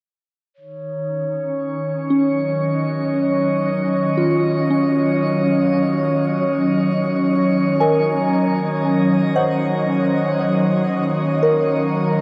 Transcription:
0.54 ambient pad D#3, synth drone A#3, glass harmonica C#5
0.58 synth drone D#3
1.04 ambient pad C#4
2.10 synth bell C#4
2.27 ambient pad F#3
2.33 ambient pad D#5
4.17 synth bell F4
4.70 synth bell C#4
7.80 synth bell A#4 G#5
9.35 synth bell C5 D#5 F#5
11.43 synth bell A#4

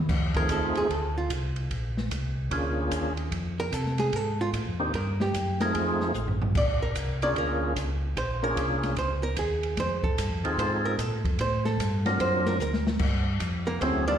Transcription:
0.09 tonewheel organ F2, kick, snare, crash
0.34 tonewheel organ A3 C4 D#4 F4 G#4, hollow-body jazz guitar A#4, kick, ride
0.49 tonewheel organ D#2, hollow-body jazz guitar A4, kick, hi-hat pedal, ride
0.75 tonewheel organ D#2, hollow-body jazz guitar G#4, ride
0.89 tonewheel organ D2, hollow-body jazz guitar A4, kick, ride
1.18 hollow-body jazz guitar F4
1.30 tonewheel organ C2, kick, hi-hat pedal, ride
1.56 ride
1.70 tonewheel organ A#1, kick, ride
1.97 snare
2.11 tonewheel organ C2, kick, hi-hat pedal, ride
2.50 tonewheel organ D2 A#3 C#4 D4 F4 G#4, kick, ride
2.91 tonewheel organ D#2, kick, hi-hat pedal, ride
3.17 ride
3.32 tonewheel organ F2, kick, ride
3.60 hollow-body jazz guitar A#4
3.72 tonewheel organ C3, hollow-body jazz guitar A4, kick, hi-hat pedal, ride
3.86 snare
3.98 hollow-body jazz guitar G#4, snare, ride
4.13 tonewheel organ G#2, hollow-body jazz guitar A4, kick, ride
4.41 hollow-body jazz guitar F4
4.53 tonewheel organ A2, kick, hi-hat pedal, ride
4.67 tonewheel organ F2
4.80 tonewheel organ D#2 A#3 C4 D4 D#4 G4
4.94 tonewheel organ G2, hollow-body jazz guitar A#4, kick, ride
5.20 hollow-body jazz guitar G4, snare
5.34 tonewheel organ F#2, kick, hi-hat pedal, ride
5.60 tonewheel organ A3 C4 D#4 F4 G#4, hollow-body jazz guitar A#4, snare, ride
5.74 tonewheel organ F2, hollow-body jazz guitar G#4, kick, ride
6.01 snare
6.14 tonewheel organ A1, hi-hat pedal
6.28 floor tom
6.42 floor tom
6.55 tonewheel organ A#1, hollow-body jazz guitar D5, kick, crash
6.82 hollow-body jazz guitar A#4
6.95 tonewheel organ C2, kick, hi-hat pedal, ride
7.22 tonewheel organ A#3 C#4 D4 F4 G#4, hollow-body jazz guitar D5, ride
7.35 tonewheel organ D2, hollow-body jazz guitar A#4, kick, ride
7.76 tonewheel organ C#2, kick, hi-hat pedal, ride
8.16 tonewheel organ A#1, hollow-body jazz guitar C5, kick, ride
8.43 tonewheel organ A#3 C#4 D4 F4 G#4, hollow-body jazz guitar A#4
8.57 tonewheel organ C2, kick, hi-hat pedal, ride
8.83 snare, ride
8.96 tonewheel organ C#2, hollow-body jazz guitar C5, kick, ride
9.23 hollow-body jazz guitar A#4
9.37 tonewheel organ D#2, hollow-body jazz guitar G#4, kick, hi-hat pedal, ride
9.63 ride
9.77 tonewheel organ F2, hollow-body jazz guitar C5, kick, snare, ride
10.03 tonewheel organ F2, hollow-body jazz guitar A4, kick
10.17 tonewheel organ G2, kick, hi-hat pedal, ride
10.30 tonewheel organ F2
10.43 tonewheel organ D#2 C4 D#4 F4 G#4 A4, ride
10.57 tonewheel organ G#2, hollow-body jazz guitar C5, kick, ride
10.85 hollow-body jazz guitar A#4
10.98 tonewheel organ A#2, hollow-body jazz guitar A4, kick, hi-hat pedal, ride
11.10 tonewheel organ A2
11.25 tonewheel organ F2, kick, ride
11.38 tonewheel organ A2, hollow-body jazz guitar C5, kick, ride
11.65 hollow-body jazz guitar A4, snare
11.79 tonewheel organ G2, kick, hi-hat pedal, ride
12.06 tonewheel organ F#3 C4 D4 F4 A#4, snare, ride
12.19 tonewheel organ F#2, hollow-body jazz guitar C5, kick, ride
12.46 hollow-body jazz guitar A#4, snare
12.59 tonewheel organ D2, hollow-body jazz guitar A#4, hi-hat pedal
12.74 snare
12.87 snare
12.99 tonewheel organ G2, kick, crash
13.40 tonewheel organ F2, kick, hi-hat pedal, ride
13.67 hollow-body jazz guitar A#3 A#4
13.81 tonewheel organ D2 F#3 A3 C#4 E4 G#4, hollow-body jazz guitar C4 C5, kick, ride
14.07 tonewheel organ G3 A#3 D4 F4 A4, hollow-body jazz guitar D4 D5

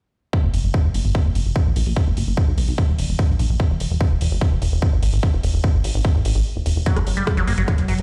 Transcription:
0.33 kick
0.43 analog synth bass F#1
0.54 analog synth bass F#1, open hi-hat
0.64 analog synth bass F#1
0.74 kick
0.84 analog synth bass F#1
0.94 analog synth bass F#1, open hi-hat
1.05 analog synth bass G1
1.15 kick
1.25 analog synth bass F#1
1.35 analog synth bass F#1, open hi-hat
1.45 analog synth bass F#1
1.56 kick
1.66 analog synth bass A#1
1.76 analog synth bass A#1, open hi-hat
1.86 analog synth bass A#1, open hi-hat
1.96 kick
2.07 analog synth bass F#1
2.17 analog synth bass F#1, open hi-hat
2.27 analog synth bass F#1
2.37 kick
2.47 analog synth bass B1
2.58 analog synth bass B1, open hi-hat
2.68 analog synth bass B1, open hi-hat
2.78 kick
2.88 analog synth bass E1
2.98 analog synth bass E1, open hi-hat
3.09 analog synth bass E1
3.19 kick
3.29 analog synth bass A#1
3.39 analog synth bass A#1, open hi-hat
3.50 analog synth bass A#1
3.60 kick
3.70 analog synth bass E1
3.80 analog synth bass E1, open hi-hat
3.90 analog synth bass E1
4.01 kick
4.11 analog synth bass E1
4.21 analog synth bass E1, open hi-hat
4.31 analog synth bass F#1
4.41 kick
4.52 analog synth bass E1
4.62 analog synth bass E1, open hi-hat
4.72 analog synth bass E1
4.82 kick
4.92 analog synth bass G#1
5.03 analog synth bass G#1, open hi-hat
5.13 analog synth bass G#1, open hi-hat
5.23 kick
5.33 analog synth bass E1
5.43 analog synth bass E1, open hi-hat
5.54 analog synth bass E1
5.64 kick
5.74 analog synth bass G#1
5.84 analog synth bass G#1, open hi-hat
5.94 analog synth bass G#1, open hi-hat
6.05 kick
6.15 analog synth bass G#1
6.25 analog synth bass G#1, open hi-hat
6.35 analog synth bass G#1
6.56 analog synth bass E1
6.66 analog synth bass E1, open hi-hat
6.76 analog synth bass E1
6.86 acid bass F#3, synth texture F#3, kick, closed hi-hat
6.96 analog synth bass F#1, acid bass F#4, cross-stick, closed hi-hat
7.07 analog synth bass F#1, open hi-hat
7.17 analog synth bass F#1, acid bass G3, closed hi-hat
7.27 kick, cross-stick, closed hi-hat
7.37 analog synth bass F#1, acid bass F#3, closed hi-hat
7.47 analog synth bass F#1, acid bass A#3, open hi-hat
7.58 analog synth bass G1, acid bass F#3, closed hi-hat
7.68 kick, cross-stick, closed hi-hat
7.78 analog synth bass F#1, closed hi-hat
7.88 analog synth bass F#1, acid bass F#3, open hi-hat
7.98 analog synth bass F#1, closed hi-hat

